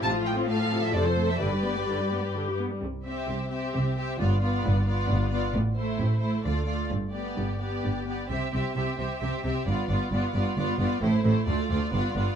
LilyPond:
<<
  \new Staff \with { instrumentName = "Violin section" } { \time 3/4 \key c \major \tempo 4 = 132 a''8 g''8 f''8. e''16 d''16 c''8 e''16 | d''2 r4 | r8 e''4 e''4 e''8 | d''8 d''4 d''4 d''8 |
r8 c''4 c''8 d''8 d''8 | r8 d''4 d''4 d''8 | e''8 e''8 e''8 e''8 e''8 e''8 | d''8 d''8 d''8 d''8 d''8 d''8 |
c''8 c''8 d''8 d''8 d''8 d''8 | }
  \new Staff \with { instrumentName = "Violin section" } { \time 3/4 \key c \major f'4 a'4 c''4 | b'2~ b'8 r8 | r8 g'4 g'4 g'8 | f'8 f'4 f'4 f'8 |
r8 e'4 e'8 f'8 f'8 | r8 g'4 g'4 g'8 | g'8 g'8 g'8 g'8 g'8 g'8 | f'8 f'8 f'8 f'8 f'8 f'8 |
e'8 e'8 f'8 f'8 f'8 f'8 | }
  \new Staff \with { instrumentName = "Viola section" } { \time 3/4 \key c \major << { f'2 a'4 | g'2~ g'8 r8 | r2. | r2. |
r2. | r2. | r2. | r2. |
r2. | } \\ { c16 f16 a16 c'16 a16 f16 c16 f16 c16 f16 a16 c'16 | d16 g16 b16 g16 d16 g16 b16 g16 d16 g16 b16 g16 | r8 c'4 c'4 c'8 | b8 b4 b4 b8 |
r8 a4 a8 a8 a8 | r8 b4 b4 b8 | c'8 c'8 c'8 c'8 c'8 c'8 | b8 b8 b8 b8 b8 b8 |
a8 a8 a8 a8 b8 b8 | } >> }
  \new Staff \with { instrumentName = "Cello section" } { \clef bass \time 3/4 \key c \major a,2 f,4 | g,2~ g,8 r8 | c4 c4 c4 | g,4 g,4 g,4 |
a,4 a,4 d4 | g,4 g,4 g,4 | c8 c8 c8 c8 c8 c8 | g,8 g,8 g,8 g,8 g,8 g,8 |
a,8 a,8 d,8 d,8 g,8 g,8 | }
  \new Staff \with { instrumentName = "Double bass section" } { \clef bass \time 3/4 \key c \major a,,4 r4 f,,4 | g,,4 r2 | c,4 c,4 c,4 | g,,4 g,,4 g,,4 |
a,,4 a,,4 d,4 | g,,4 g,,4 g,,4 | c,8 c,8 c,8 c,8 c,8 c,8 | g,,8 g,,8 g,,8 g,,8 g,,8 g,,8 |
a,,8 a,,8 d,8 d,8 g,,8 g,,8 | }
>>